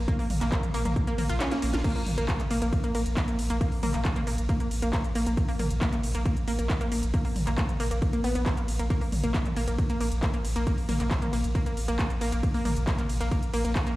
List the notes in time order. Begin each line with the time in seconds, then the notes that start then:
0.08 A#3, kick, closed hi-hat
0.19 A#3, open hi-hat
0.30 A#1, mid tom, open hi-hat, ride
0.41 A#1 A#3, clap, closed hi-hat
0.52 A#3, kick, clap, closed hi-hat
0.63 closed hi-hat, mid tom
0.74 A#1 A#3, open hi-hat, ride
0.85 A#1 A#3, closed hi-hat, mid tom
0.96 kick, closed hi-hat
1.07 A#3, closed hi-hat
1.18 A#1 A#3, mid tom, open hi-hat, ride
1.29 A#1 F4, closed hi-hat
1.40 C#4, snare, clap, closed hi-hat
1.51 A#3, snare, closed hi-hat
1.62 A#1 A#3, open hi-hat, ride
1.73 A#1 F4, snare, closed hi-hat
1.84 A#3, kick, closed hi-hat, crash, ride
1.96 A#3, open hi-hat, ride
2.06 A#1, mid tom, open hi-hat, ride
2.18 A#1 A#3, closed hi-hat, ride
2.28 A#3, kick, clap, closed hi-hat, ride
2.40 clap, closed hi-hat, mid tom, ride
2.51 A#1 A#3, open hi-hat, ride
2.62 A#1 A#3, closed hi-hat, ride
2.73 kick, closed hi-hat, ride
2.84 A#3, closed hi-hat, ride
2.95 A#1 A#3, open hi-hat, ride
3.06 A#1, closed hi-hat, ride
3.17 A#3, kick, clap, closed hi-hat, ride
3.28 A#3, closed hi-hat, ride
3.39 A#1, open hi-hat, ride
3.50 A#1 A#3, closed hi-hat, ride
3.61 A#3, kick, closed hi-hat, ride
3.72 open hi-hat, ride
3.83 A#1 A#3, mid tom, open hi-hat, ride
3.94 A#1 A#3, clap, closed hi-hat, ride
4.05 kick, clap, closed hi-hat, ride
4.16 A#3, closed hi-hat, mid tom, ride
4.27 A#1 A#3, open hi-hat, ride
4.38 A#1, closed hi-hat, ride
4.49 A#3, kick, closed hi-hat, ride
4.60 A#3, closed hi-hat, ride
4.71 A#1, open hi-hat, ride
4.82 A#1 A#3, closed hi-hat, ride
4.93 A#3, kick, clap, closed hi-hat, ride
5.04 closed hi-hat, ride
5.15 A#1 A#3, open hi-hat, ride
5.26 A#1 A#3, closed hi-hat, ride
5.37 kick, closed hi-hat, ride
5.49 A#3, open hi-hat, ride
5.59 A#1 A#3, mid tom, open hi-hat, ride
5.71 A#1, closed hi-hat, ride
5.81 A#3, kick, clap, closed hi-hat, ride
5.93 A#3, clap, closed hi-hat, mid tom, ride
6.03 A#1, open hi-hat, ride
6.15 A#1 A#3, closed hi-hat, ride
6.26 A#3, kick, closed hi-hat, ride
6.37 closed hi-hat, ride
6.48 A#1 A#3, open hi-hat, ride
6.59 A#1 A#3, closed hi-hat, ride
6.70 kick, clap, closed hi-hat, ride
6.81 A#3, closed hi-hat, ride
6.92 A#1 A#3, open hi-hat, ride
7.03 A#1, closed hi-hat, ride
7.14 A#3, kick, closed hi-hat, ride
7.25 A#3, open hi-hat, ride
7.36 A#1, mid tom, open hi-hat, ride
7.47 A#1 A#3, clap, closed hi-hat, ride
7.58 A#3, kick, clap, closed hi-hat, ride
7.69 closed hi-hat, mid tom, ride
7.80 A#1 A#3, open hi-hat, ride
7.91 A#1 A#3, closed hi-hat, ride
8.02 kick, closed hi-hat, ride
8.13 A#3, closed hi-hat, ride
8.24 A#1 B3, open hi-hat, ride
8.35 A#1 B3, closed hi-hat, ride
8.46 A#3, kick, clap, closed hi-hat, ride
8.57 A#3, closed hi-hat, ride
8.68 A#1, open hi-hat, ride
8.79 A#1 A#3, closed hi-hat, ride
8.90 A#3, kick, closed hi-hat, ride
9.01 A#3, open hi-hat, ride
9.12 A#1, mid tom, open hi-hat, ride
9.23 A#1 A#3, closed hi-hat, ride
9.34 A#3, kick, clap, closed hi-hat, ride
9.46 clap, closed hi-hat, mid tom, ride
9.56 A#1 A#3, open hi-hat, ride
9.68 A#1 A#3, closed hi-hat, ride
9.78 kick, closed hi-hat, ride
9.90 A#3, closed hi-hat, ride
10.01 A#1 A#3, open hi-hat, ride
10.12 A#1, closed hi-hat, ride
10.23 A#3, kick, clap, closed hi-hat, ride
10.34 A#3, closed hi-hat, ride
10.45 A#1, open hi-hat, ride
10.56 A#1 A#3, closed hi-hat, ride
10.67 A#3, kick, closed hi-hat, ride
10.78 open hi-hat, ride
10.89 A#1 A#3, mid tom, open hi-hat, ride
11.00 A#1 A#3, clap, closed hi-hat, ride
11.11 kick, clap, closed hi-hat, ride
11.22 A#3, closed hi-hat, mid tom, ride
11.33 A#1 A#3, open hi-hat, ride
11.44 A#1, closed hi-hat, ride
11.55 A#3, kick, closed hi-hat, ride
11.66 A#3, closed hi-hat, ride
11.77 A#1, open hi-hat, ride
11.88 A#1 A#3, closed hi-hat, ride
11.99 A#3, kick, clap, closed hi-hat, ride
12.10 closed hi-hat, ride
12.21 A#1 A#3, open hi-hat, ride
12.32 A#1 A#3, closed hi-hat, ride
12.43 kick, closed hi-hat, ride
12.54 A#3, open hi-hat, ride
12.65 A#1 A#3, mid tom, open hi-hat, ride
12.76 A#1, closed hi-hat, ride
12.87 A#3, kick, clap, closed hi-hat, ride
12.99 A#3, clap, closed hi-hat, mid tom, ride
13.09 A#1, open hi-hat, ride
13.21 A#1 A#3, closed hi-hat, ride
13.31 A#3, kick, closed hi-hat, ride
13.43 closed hi-hat, ride
13.53 A#1 A#3, open hi-hat, ride
13.65 A#1 A#3, closed hi-hat, ride
13.76 kick, clap, closed hi-hat, ride
13.87 A#3, closed hi-hat, ride